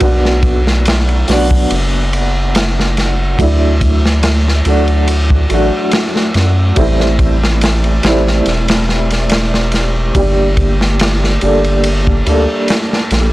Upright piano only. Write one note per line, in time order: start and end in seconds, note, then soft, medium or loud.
0.00 1.23 F#3 medium
0.00 1.23 B3 medium
0.00 1.24 D4 medium
0.04 1.25 F#4 medium
1.28 3.34 F#3 medium
1.28 3.35 B3 medium
1.28 3.36 D4 medium
1.32 3.36 F#4 medium
3.38 4.61 F#3 medium
3.38 4.61 A3 medium
3.38 4.62 D4 medium
3.42 4.63 E4 medium
4.66 5.46 F#3 medium
4.66 5.46 A3 medium
4.66 5.46 D4 medium
4.66 5.47 F#4 medium
5.49 6.72 F#3 medium
5.49 6.73 A3 medium
5.49 6.73 D4 medium
5.53 6.74 F#4 loud
6.76 7.99 G3 medium
6.76 7.99 A3 medium
6.76 8.00 C4 medium
6.76 8.01 E4 medium
8.03 10.10 G3 medium
8.03 10.11 A3 medium
8.03 10.11 C4 medium
8.03 10.12 E4 medium
10.15 11.37 G3 medium
10.15 11.38 A#3 medium
10.15 11.38 D4 medium
10.15 11.39 G4 medium
11.42 12.22 G3 medium
11.42 12.22 A#3 medium
11.42 12.22 D4 medium
11.42 12.23 A4 medium
12.25 13.33 G3 medium
12.25 13.33 A#3 medium
12.25 13.33 D4 medium
12.30 13.33 A4 medium